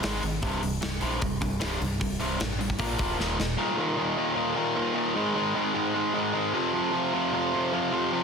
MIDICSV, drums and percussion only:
0, 0, Header, 1, 2, 480
1, 0, Start_track
1, 0, Tempo, 394477
1, 516, Time_signature, 4, 2, 24, 8
1, 10019, End_track
2, 0, Start_track
2, 0, Title_t, "Drums"
2, 37, Note_on_c, 9, 46, 76
2, 47, Note_on_c, 9, 38, 111
2, 159, Note_off_c, 9, 46, 0
2, 168, Note_off_c, 9, 38, 0
2, 279, Note_on_c, 9, 46, 56
2, 400, Note_off_c, 9, 46, 0
2, 517, Note_on_c, 9, 46, 77
2, 521, Note_on_c, 9, 36, 98
2, 639, Note_off_c, 9, 46, 0
2, 642, Note_off_c, 9, 36, 0
2, 766, Note_on_c, 9, 46, 60
2, 888, Note_off_c, 9, 46, 0
2, 998, Note_on_c, 9, 46, 75
2, 1008, Note_on_c, 9, 38, 103
2, 1120, Note_off_c, 9, 46, 0
2, 1129, Note_off_c, 9, 38, 0
2, 1228, Note_on_c, 9, 46, 59
2, 1350, Note_off_c, 9, 46, 0
2, 1480, Note_on_c, 9, 46, 78
2, 1485, Note_on_c, 9, 36, 113
2, 1602, Note_off_c, 9, 46, 0
2, 1607, Note_off_c, 9, 36, 0
2, 1723, Note_on_c, 9, 46, 59
2, 1724, Note_on_c, 9, 36, 92
2, 1844, Note_off_c, 9, 46, 0
2, 1846, Note_off_c, 9, 36, 0
2, 1957, Note_on_c, 9, 46, 77
2, 1967, Note_on_c, 9, 38, 103
2, 2079, Note_off_c, 9, 46, 0
2, 2089, Note_off_c, 9, 38, 0
2, 2211, Note_on_c, 9, 46, 53
2, 2333, Note_off_c, 9, 46, 0
2, 2444, Note_on_c, 9, 46, 69
2, 2446, Note_on_c, 9, 36, 96
2, 2566, Note_off_c, 9, 46, 0
2, 2568, Note_off_c, 9, 36, 0
2, 2684, Note_on_c, 9, 46, 52
2, 2805, Note_off_c, 9, 46, 0
2, 2921, Note_on_c, 9, 46, 67
2, 2931, Note_on_c, 9, 38, 109
2, 3042, Note_off_c, 9, 46, 0
2, 3052, Note_off_c, 9, 38, 0
2, 3173, Note_on_c, 9, 46, 54
2, 3284, Note_on_c, 9, 36, 74
2, 3295, Note_off_c, 9, 46, 0
2, 3390, Note_on_c, 9, 46, 79
2, 3401, Note_off_c, 9, 36, 0
2, 3401, Note_on_c, 9, 36, 94
2, 3512, Note_off_c, 9, 46, 0
2, 3523, Note_off_c, 9, 36, 0
2, 3634, Note_on_c, 9, 46, 60
2, 3642, Note_on_c, 9, 36, 92
2, 3756, Note_off_c, 9, 46, 0
2, 3764, Note_off_c, 9, 36, 0
2, 3895, Note_on_c, 9, 38, 61
2, 4017, Note_off_c, 9, 38, 0
2, 4134, Note_on_c, 9, 38, 89
2, 4256, Note_off_c, 9, 38, 0
2, 10019, End_track
0, 0, End_of_file